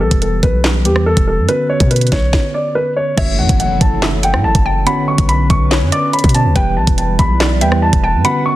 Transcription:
Already playing: tine electric piano E3 G3 B3 G4 B4
0.01 808-style bass B1, grand piano A4
0.11 808-style bass E1, kick, closed hi-hat
0.22 grand piano A4, closed hi-hat
0.43 808-style bass B1, grand piano B4, kick, closed hi-hat
0.64 snare, clap
0.85 808-style bass E2, tine electric piano E3 G3 B3 G4 B4, grand piano G4, closed hi-hat
0.96 cross-stick
1.06 grand piano A4
1.17 808-style bass E1, kick, closed hi-hat
1.27 grand piano A4
1.38 808-style bass G2
1.48 tine electric piano D3 B3 C#4 F#4 B4, grand piano B4, closed hi-hat
1.69 grand piano C#5
1.80 808-style bass B2, kick, closed hi-hat
1.91 grand piano B4, closed hi-hat
1.96 closed hi-hat
2.01 closed hi-hat
2.07 closed hi-hat
2.12 808-style bass B1, grand piano C#5, kick, snare, closed hi-hat
2.33 kick, snare
2.54 grand piano D5
2.75 grand piano B4
2.96 grand piano C#5
3.17 808-style bass F#1, tine electric piano E3 A3 C#4 F#4 C#5, analog synth pad F#3 E4 A4, synth pluck C#5, grand piano E5, kick, closed hi-hat, crash, impact
3.39 808-style bass F#2, grand piano F#5
3.49 808-style bass F#1, kick, closed hi-hat
3.60 grand piano F#5, closed hi-hat
3.81 808-style bass F#1, grand piano A5, kick, closed hi-hat
4.02 synth pluck E5, snare, clap
4.23 synth pluck F#5, grand piano G5, closed hi-hat
4.34 808-style bass A2, cross-stick
4.44 808-style bass F#1, grand piano A5
4.55 808-style bass F#1, kick, closed hi-hat
4.65 synth pluck G5, grand piano A5
4.86 tine electric piano D3 B3 C#4 F#4 C#5, analog synth pad D3 C#4 B4, synth pluck F#5, grand piano B5, closed hi-hat
5.08 grand piano C#6
5.18 808-style bass B1, kick, closed hi-hat
5.29 grand piano B5, closed hi-hat
5.50 808-style bass B1, grand piano C#6, kick, closed hi-hat
5.71 synth pluck C#5, snare, clap
5.82 808-style bass F#2
5.92 synth pluck D5, grand piano D6, closed hi-hat
6.13 grand piano B5, closed hi-hat
6.19 closed hi-hat
6.24 808-style bass B2, kick, closed hi-hat
6.29 closed hi-hat
6.34 tine electric piano D3 B3 C#4 F#4 C#5, grand piano A5, closed hi-hat
6.45 808-style bass D2
6.55 808-style bass E1, tine electric piano E3 G3 B3 G4 B4, analog synth pad G3 E4 B4, synth pluck B4, grand piano G5, kick, closed hi-hat
6.77 808-style bass B1, grand piano A5
6.87 808-style bass E1, kick, closed hi-hat
6.98 grand piano A5, closed hi-hat
7.19 808-style bass B1, grand piano B5, kick, closed hi-hat
7.40 synth pluck D5, snare, clap
7.61 808-style bass E2, tine electric piano E3 G3 B3 G4 B4, synth pluck E5, grand piano G5, closed hi-hat
7.72 cross-stick
7.82 grand piano A5
7.93 808-style bass E1, kick, closed hi-hat
8.03 synth pluck G5, grand piano A5
8.14 808-style bass G2
8.24 tine electric piano D3 B3 C#4 F#4 B4, analog synth pad D3 C#4, synth pluck F#5, grand piano B5, closed hi-hat
8.46 grand piano C#6

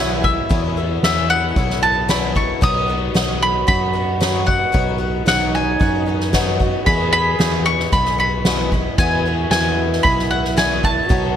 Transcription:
Already playing: fingered electric bass B1, twelve-string acoustic guitar E2 B2 F#3 G#3 E4, french horn E4, mandolin G#5
0.00 twelve-string acoustic guitar B3
0.23 twelve-string acoustic guitar F#3 G#3 B3 E4, mandolin E5, kick, ride
0.49 twelve-string acoustic guitar E2 B2 F#3 G#3 B3 E4, fingered electric bass E2, kick, ride
0.77 twelve-string acoustic guitar F#3 G#3 B3 E4, ride
1.03 fingered electric bass E2, twelve-string acoustic guitar E2 B2 F#3 G#3 B3 E4, mandolin E5, snare, ride
1.30 mandolin F#5, ride
1.56 fingered electric bass B1, twelve-string acoustic guitar F#3 G#3 B3 E4, kick, ride
1.70 snare
1.82 twelve-string acoustic guitar F#3 G#3 B3 E4, mandolin A5, ride
2.09 twelve-string acoustic guitar E2 B2 F#3 G#3 B3 E4, mandolin B5, snare, ride
2.35 twelve-string acoustic guitar F#3 G#3 B3 E4, mandolin C#6, kick, ride
2.61 fingered electric bass B1, twelve-string acoustic guitar B2 F#3 B3 D#4 F#4, french horn F#4, mandolin D#6, kick, ride
2.88 twelve-string acoustic guitar B3 D#4 F#4, ride
3.14 fingered electric bass B1, twelve-string acoustic guitar B2 F#3 B3 D#4 F#4, snare, ride
3.42 mandolin B5, ride
3.67 fingered electric bass F#2, twelve-string acoustic guitar F#3 B3 D#4 F#4, mandolin B5, kick, ride
3.93 twelve-string acoustic guitar B3 D#4 F#4, ride
4.20 twelve-string acoustic guitar B2 F#3 B3 D#4 F#4, snare, ride
4.46 twelve-string acoustic guitar B3 D#4 F#4, mandolin F#5, kick, ride
4.72 fingered electric bass B1, twelve-string acoustic guitar B2 F#3 B3 D#4 F#4, kick, ride
4.98 twelve-string acoustic guitar B3 D#4 F#4, ride
5.26 fingered electric bass B1, twelve-string acoustic guitar B2 F#3 B3 D#4 F#4, french horn D#4, mandolin F#5, snare, ride
5.54 mandolin G#5, ride
5.79 fingered electric bass F#2, twelve-string acoustic guitar F#3 B3 D#4 F#4, kick, ride
6.06 twelve-string acoustic guitar B3 D#4 F#4, ride
6.20 snare
6.33 twelve-string acoustic guitar B2 F#3 B3 D#4 F#4, french horn F#4, kick, snare, ride
6.59 twelve-string acoustic guitar B3 D#4 F#4, french horn F#4, kick, ride
6.85 twelve-string acoustic guitar E2 B2 E3 G#3 B3 F#4, fingered electric bass E2, french horn G#4, mandolin B5, kick, ride
7.13 twelve-string acoustic guitar E3 G#3 B3 F#4, mandolin B5, ride
7.39 twelve-string acoustic guitar E2 B2 E3 G#3 B3 F#4, fingered electric bass E2, snare, ride
7.66 mandolin C#6, ride
7.80 snare
7.92 fingered electric bass B1, twelve-string acoustic guitar E3 G#3 B3 F#4, mandolin B5, kick, ride
8.05 snare
8.18 twelve-string acoustic guitar E3 G#3 B3 F#4, mandolin B5, ride
8.45 twelve-string acoustic guitar E2 B2 E3 G#3 B3 F#4, french horn E4, snare, ride
8.72 twelve-string acoustic guitar E3 G#3 B3 F#4, kick, ride
8.98 fingered electric bass E2, twelve-string acoustic guitar E2 B2 E3 G#3 B3 F#4, mandolin G#5, kick, ride
9.25 twelve-string acoustic guitar E3 G#3 B3 F#4, ride
9.51 fingered electric bass E2, twelve-string acoustic guitar E2 B2 E3 G#3 B3, mandolin G#5, snare, ride
9.55 twelve-string acoustic guitar F#4
9.79 ride
9.93 snare
10.03 fingered electric bass B1, twelve-string acoustic guitar E3 G#3 B3 F#4, mandolin B5, kick, ride
10.19 snare
10.31 twelve-string acoustic guitar E3 G#3 B3 F#4, mandolin F#5, ride
10.45 snare
10.57 twelve-string acoustic guitar E2 B2 E3 G#3 B3 F#4, mandolin G#5, snare, ride
10.83 twelve-string acoustic guitar E3 G#3 B3 F#4, mandolin A5, kick, ride
11.08 fingered electric bass B1, twelve-string acoustic guitar B2 F#3 B3 D#4 F#4, french horn F#4, kick, ride

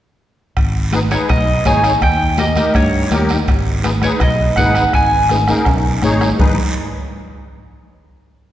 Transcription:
0.57 fingered electric bass G#1, bombo low, bombo rim, high timbale, long guiro
0.92 accordion D#4 G#4 B4, bombo rim, high conga, high timbale, short guiro
1.11 accordion D#4 G#4 B4, clean electric guitar C#5, bombo rim, high conga, high timbale, short guiro
1.29 fingered electric bass B1, clean electric guitar D#5, bombo low, bombo rim, high timbale, long guiro
1.65 fingered electric bass G#1, accordion D#4 G#4 C#5, clean electric guitar G#5, bombo low, bombo rim, high conga, high timbale, low timbale, short guiro
1.84 bombo rim, high timbale, short guiro
2.01 fingered electric bass D#2, clean electric guitar G5, bombo low, bombo rim, high timbale, long guiro
2.38 accordion D#4 G4 A#4, clean electric guitar D#5, bombo rim, high conga, high timbale, short guiro
2.56 accordion D#4 G4 A#4, bombo rim, high conga, high timbale, short guiro
2.74 fingered electric bass G2, clean electric guitar C#5, bombo low, bombo rim, high timbale, long guiro
3.11 fingered electric bass D#2, accordion D#4 G4 A#4, bombo rim, high conga, high timbale, low timbale, short guiro
3.29 bombo rim, high timbale, short guiro
3.48 fingered electric bass G#1, bombo low, bombo rim, high timbale, long guiro
3.83 accordion D#4 G#4 B4, bombo rim, high conga, high timbale, short guiro
4.02 accordion D#4 G#4 B4, clean electric guitar C#5, bombo rim, high conga, high timbale, short guiro
4.20 fingered electric bass B1, clean electric guitar D#5, bombo low, bombo rim, high timbale, long guiro
4.56 fingered electric bass G#1, accordion D#4 G#4 B4, clean electric guitar F#5, bombo low, bombo rim, high conga, high timbale, low timbale, short guiro
4.75 bombo rim, high timbale, short guiro
4.93 fingered electric bass G#1, clean electric guitar G#5, bombo low, bombo rim, high timbale, long guiro
5.29 accordion D#4 G#4 B4, bombo rim, high conga, high timbale, short guiro
5.48 accordion D#4 G#4 A#4, bombo rim, high conga, high timbale, short guiro
5.65 fingered electric bass B1, bombo low, bombo rim, high timbale, long guiro
6.02 fingered electric bass G#1, accordion D#4 G#4 C#5, bombo rim, high conga, short guiro
6.21 bombo rim, low timbale, short guiro
6.38 fingered electric bass G#1, accordion D#4 G#4 B4, bombo low, low conga, low timbale, long guiro

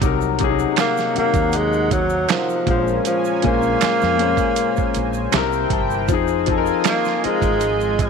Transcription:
0.01 fretless electric bass C2, grand piano C3 F#3 D#4, analog synth pad D#4 A#4 C5 F#5, kick, closed hi-hat, shaker
0.06 grand piano A#4
0.21 shaker
0.39 grand piano C3 F#3, kick, closed hi-hat
0.43 grand piano C#4 G#4
0.49 grand piano D#4
0.59 shaker
0.76 tenor saxophone A#3, finger snap, snare, closed hi-hat, shaker
0.97 snare, shaker
1.15 grand piano C3 F#3 D#4, tenor saxophone A#3, muted fretless electric bass stroke, closed hi-hat
1.20 grand piano A#4
1.34 fretless electric bass D#2, kick, closed hi-hat, shaker
1.52 tenor saxophone G#3, closed hi-hat, shaker
1.73 shaker
1.91 tenor saxophone F#3, kick, closed hi-hat, shaker
2.10 shaker
2.29 tenor saxophone F3, finger snap, snare, closed hi-hat, shaker
2.49 shaker
2.66 fretless electric bass A#1, grand piano A#2 G#3 C4, tenor saxophone F3, analog synth pad C#4 G#5, kick, closed hi-hat
2.71 grand piano C5
2.76 grand piano C#4
2.88 shaker
3.05 tenor saxophone F3, closed hi-hat, shaker
3.25 shaker
3.42 fretless electric bass A#1, grand piano A#2 G#3 C#4, tenor saxophone A#3, kick, closed hi-hat
3.47 grand piano C5
3.62 shaker
3.81 finger snap, muted fretless electric bass stroke, snare, closed hi-hat, shaker
4.01 fretless electric bass F2, snare, shaker
4.18 grand piano A#2 G#3 C#4, closed hi-hat
4.22 grand piano C5
4.37 kick, closed hi-hat, shaker
4.56 closed hi-hat, shaker
4.76 kick, shaker
4.94 fretless electric bass A#1, closed hi-hat, shaker
5.13 shaker
5.32 fretless electric bass C2, grand piano C3 C4 E4 E5, analog synth pad E4 G5, finger snap, snare, closed hi-hat, shaker
5.37 grand piano A#4
5.52 shaker
5.70 fretless electric bass G1, grand piano A5, kick, closed hi-hat
5.90 shaker
6.06 fretless electric bass F1, grand piano F3 C4, analog synth pad F4 D#5 G#5, kick, closed hi-hat, shaker
6.12 grand piano D#4 G#4
6.28 shaker
6.46 grand piano F3 C4 D#4, kick, closed hi-hat
6.51 grand piano A4
6.58 grand piano A#4
6.66 shaker
6.84 finger snap, snare, closed hi-hat, shaker
6.88 tenor saxophone A#3
7.05 snare, shaker
7.22 tenor saxophone G#3, grand piano C4 D#4 F4, muted fretless electric bass stroke, closed hi-hat
7.27 grand piano A#4
7.42 fretless electric bass G#1, kick, closed hi-hat, shaker
7.60 closed hi-hat, shaker
7.81 shaker
7.99 tenor saxophone F#3, kick, closed hi-hat, shaker

